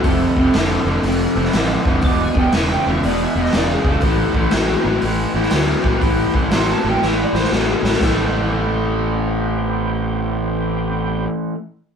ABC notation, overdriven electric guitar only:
X:1
M:4/4
L:1/8
Q:"Swing" 1/4=121
K:Am
V:1 name="Overdriven electric guitar" clef=bass
[F,,C,] [F,,C,] [F,,D,] [F,,D,] [F,,C,] [F,,C,] [F,,D,] [F,,D,] | [E,,B,,] [E,,B,,] [E,,^C,] [E,,C,] [E,,B,,] [E,,B,,] [E,,C,] [E,,C,] | [A,,E,] [A,,E,] [A,,^F,] [A,,F,] [A,,E,] [A,,E,] [A,,F,] [A,,F,] | [A,,E,] [A,,E,] [A,,^F,] [A,,F,] [A,,E,] [A,,E,] [A,,F,] [A,,F,] |
[A,,E,A,]8- | [A,,E,A,]8 |]